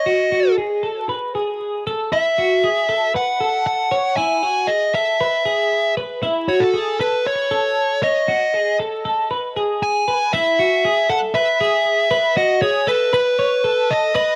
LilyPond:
<<
  \new Staff \with { instrumentName = "Lead electric guitar" } { \time 4/4 \key b \mixolydian \tempo 4 = 117 dis''4 r2. | e''2 fis''4 fis''4 | gis''4 dis''8 e''2 r8 | r8 cis''16 a'8. b'8 cis''4. dis''8~ |
dis''4 r2 gis''4 | e''4. fis''8 e''2 | dis''8 cis''8 b'8 b'4. dis''8 dis''8 | }
  \new Staff \with { instrumentName = "Clean electric guitar" } { \time 4/4 \key b \mixolydian fis'8 fis'8 gis'8 a'8 b'8 gis'4 a'8 | e'8 fis'8 gis'8 a'8 b'8 a'4 cis''8 | e'8 fis'8 gis'8 a'8 b'8 gis'4 b'8 | e'8 fis'8 gis'8 a'8 b'8 a'4 cis''8 |
fis'8 gis'8 a'8 a'8 b'8 gis'4 b'8 | e'8 fis'8 gis'8 a'8 b'8 gis'4 b'8 | fis'8 gis'8 a'8 b'8 cis''8 a'4 b'8 | }
>>